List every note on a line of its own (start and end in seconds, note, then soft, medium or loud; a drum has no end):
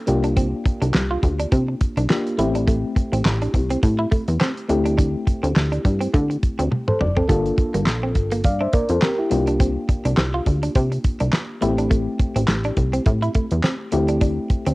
0.07 0.54 C2 loud
0.07 2.05 A#3 medium
0.07 2.06 D4 medium
0.07 2.06 F4 medium
0.07 2.06 G4 medium
0.07 muted clean electric guitar stroke soft
0.07 closed hi-hat medium
0.24 0.32 D4 medium
0.24 closed hi-hat soft
0.37 0.47 C4 medium
0.37 kick loud
0.37 closed hi-hat loud
0.65 muted clean electric guitar stroke soft
0.65 kick medium
0.65 closed hi-hat medium
0.82 0.92 C2 loud
0.82 0.90 D4 medium
0.82 closed hi-hat medium
0.94 1.18 C2 medium
0.94 snare loud
0.94 clap medium
1.11 1.19 F4 medium
1.23 1.46 D2 loud
1.23 muted clean electric guitar stroke soft
1.23 kick medium
1.23 closed hi-hat medium
1.40 1.48 D4 medium
1.40 closed hi-hat medium
1.52 1.75 C3 loud
1.52 1.62 C4 medium
1.52 kick loud
1.52 closed hi-hat medium
1.68 muted clean electric guitar stroke soft
1.81 kick medium
1.81 closed hi-hat medium
1.97 2.07 C2 medium
1.97 2.05 D4 medium
1.97 closed hi-hat medium
2.09 2.38 A#3 medium
2.09 2.39 D4 medium
2.09 2.39 F4 medium
2.09 2.38 G4 medium
2.09 muted clean electric guitar stroke soft
2.09 snare loud
2.09 clap medium
2.27 closed hi-hat soft
2.38 2.85 A1 loud
2.38 4.65 A3 medium
2.38 4.65 C4 medium
2.38 2.49 E4 medium
2.38 4.66 E4 medium
2.38 4.66 G4 medium
2.38 closed hi-hat medium
2.55 2.63 D4 medium
2.55 closed hi-hat soft
2.68 2.78 A3 medium
2.68 kick loud
2.68 closed hi-hat loud
2.96 muted clean electric guitar stroke soft
2.96 kick medium
2.96 closed hi-hat medium
3.12 3.23 A1 loud
3.12 3.21 C4 medium
3.12 closed hi-hat medium
3.25 3.48 A1 loud
3.25 snare loud
3.25 clap medium
3.42 3.50 D4 medium
3.42 closed hi-hat soft
3.54 3.77 C2 loud
3.54 muted clean electric guitar stroke soft
3.54 kick medium
3.54 closed hi-hat medium
3.70 3.79 C4 medium
3.70 closed hi-hat medium
3.83 4.06 A2 loud
3.83 muted clean electric guitar stroke soft
3.83 kick loud
3.83 closed hi-hat medium
3.99 4.07 E4 medium
4.12 4.22 A3 medium
4.12 kick loud
4.12 closed hi-hat medium
4.28 4.38 E2 loud
4.28 closed hi-hat medium
4.41 4.51 C4 medium
4.41 snare loud
4.41 clap medium
4.57 closed hi-hat soft
4.69 5.16 D2 loud
4.69 6.96 A3 medium
4.69 6.96 C4 medium
4.69 6.96 E4 medium
4.69 6.97 G4 medium
4.69 muted clean electric guitar stroke soft
4.69 closed hi-hat medium
4.85 4.94 D4 medium
4.85 closed hi-hat soft
4.98 5.08 D4 medium
4.98 kick loud
4.98 closed hi-hat loud
5.27 muted clean electric guitar stroke soft
5.27 kick loud
5.27 closed hi-hat medium
5.43 5.54 D2 loud
5.43 5.51 C4 medium
5.43 closed hi-hat medium
5.56 5.79 D2 medium
5.56 snare loud
5.56 clap medium
5.72 5.80 D4 medium
5.72 closed hi-hat soft
5.85 6.08 G2 medium
5.85 muted clean electric guitar stroke soft
5.85 kick medium
5.85 closed hi-hat medium
6.01 6.09 C4 medium
6.01 closed hi-hat medium
6.14 6.37 D3 loud
6.14 6.24 A3 medium
6.14 kick loud
6.14 closed hi-hat medium
6.30 muted clean electric guitar stroke soft
6.30 closed hi-hat soft
6.43 kick medium
6.43 closed hi-hat medium
6.59 6.69 D2 loud
6.59 6.67 C4 medium
6.59 closed hi-hat medium
6.72 muted clean electric guitar stroke soft
6.72 high tom medium
6.88 7.00 A4 medium
6.88 7.00 C5 medium
6.88 mid tom medium
7.00 7.24 F#1 medium
7.00 7.11 D4 medium
7.00 7.16 D5 medium
7.00 mid tom medium
7.16 7.25 C4 medium
7.16 7.29 A4 medium
7.16 floor tom medium
7.28 7.52 G1 loud
7.28 7.39 G3 medium
7.28 9.27 A#3 medium
7.28 9.27 D4 medium
7.28 8.42 F4 medium
7.28 8.43 A4 medium
7.28 kick loud
7.28 closed hi-hat loud
7.46 closed hi-hat soft
7.58 muted clean electric guitar stroke soft
7.58 kick loud
7.58 closed hi-hat medium
7.74 7.89 G1 loud
7.74 7.82 A#3 medium
7.74 closed hi-hat medium
7.86 8.17 A#1 medium
7.86 snare medium
7.86 clap medium
8.03 8.11 C4 medium
8.15 8.46 G1 medium
8.15 muted clean electric guitar stroke soft
8.15 kick medium
8.15 closed hi-hat medium
8.32 8.40 A#3 medium
8.32 closed hi-hat medium
8.44 8.68 G2 loud
8.44 8.60 D5 medium
8.44 8.60 F5 medium
8.44 muted clean electric guitar stroke soft
8.44 kick loud
8.44 closed hi-hat medium
8.61 8.69 D4 medium
8.61 8.73 C5 medium
8.61 8.73 E5 medium
8.73 8.84 A#3 medium
8.73 8.89 A#4 medium
8.73 8.89 D5 medium
8.73 kick loud
8.73 closed hi-hat medium
8.89 9.00 F2 loud
8.89 9.02 A4 medium
8.89 9.02 C5 medium
8.89 closed hi-hat soft
9.02 9.13 C4 medium
9.02 9.17 G4 medium
9.02 9.18 A#4 medium
9.02 snare loud
9.02 clap medium
9.18 9.46 E4 medium
9.18 9.31 G4 medium
9.30 9.78 C2 loud
9.30 11.58 A#3 medium
9.30 11.58 D4 medium
9.30 11.58 F4 medium
9.30 11.58 G4 medium
9.30 muted clean electric guitar stroke soft
9.30 closed hi-hat medium
9.47 9.56 D4 medium
9.47 closed hi-hat soft
9.60 9.70 C4 medium
9.60 kick loud
9.60 closed hi-hat loud
9.89 muted clean electric guitar stroke soft
9.89 kick loud
9.89 closed hi-hat medium
10.05 10.15 C2 loud
10.05 10.13 D4 medium
10.05 closed hi-hat medium
10.17 10.41 C2 medium
10.17 snare loud
10.17 clap medium
10.34 10.42 F4 medium
10.46 10.70 D2 loud
10.46 muted clean electric guitar stroke soft
10.46 kick medium
10.46 closed hi-hat medium
10.63 10.71 D4 medium
10.63 closed hi-hat medium
10.75 10.99 C3 loud
10.75 10.86 C4 medium
10.75 kick loud
10.75 closed hi-hat medium
10.92 muted clean electric guitar stroke soft
10.92 closed hi-hat soft
11.04 kick loud
11.04 closed hi-hat medium
11.20 11.31 C2 loud
11.20 11.28 D4 medium
11.20 closed hi-hat soft
11.33 muted clean electric guitar stroke soft
11.33 snare loud
11.33 clap medium
11.61 12.08 A1 loud
11.61 13.88 A3 medium
11.61 11.69 B3 medium
11.61 11.72 E4 medium
11.61 13.89 E4 medium
11.61 13.89 G4 medium
11.61 closed hi-hat medium
11.68 13.91 C4 medium
11.78 11.86 D4 medium
11.78 closed hi-hat soft
11.91 12.01 A3 medium
11.91 kick loud
11.91 closed hi-hat loud
12.19 muted clean electric guitar stroke soft
12.19 kick medium
12.19 closed hi-hat medium
12.36 12.46 A1 loud
12.36 12.44 C4 medium
12.36 closed hi-hat medium
12.48 12.72 A1 medium
12.48 snare loud
12.48 clap medium
12.64 12.73 D4 medium
12.64 closed hi-hat soft
12.77 13.00 C2 medium
12.77 muted clean electric guitar stroke soft
12.77 kick medium
12.77 closed hi-hat medium
12.93 13.01 C4 medium
12.93 closed hi-hat medium
13.06 13.29 A2 loud
13.06 muted clean electric guitar stroke soft
13.06 kick loud
13.06 closed hi-hat medium
13.22 13.30 E4 medium
13.22 closed hi-hat soft
13.35 13.45 A3 medium
13.35 kick medium
13.35 closed hi-hat medium
13.51 13.62 E2 loud
13.51 closed hi-hat medium
13.63 13.74 C4 medium
13.63 snare loud
13.63 clap medium
13.92 14.39 D2 loud
13.92 14.74 A3 medium
13.92 14.74 C4 medium
13.92 14.74 E4 medium
13.92 14.74 G4 medium
13.92 muted clean electric guitar stroke soft
13.92 closed hi-hat medium
14.08 14.17 D4 medium
14.08 closed hi-hat soft
14.21 14.32 D4 medium
14.21 kick loud
14.21 closed hi-hat loud
14.50 muted clean electric guitar stroke soft
14.50 kick medium
14.50 closed hi-hat medium
14.66 14.74 D2 medium
14.66 14.74 C4 medium
14.66 closed hi-hat medium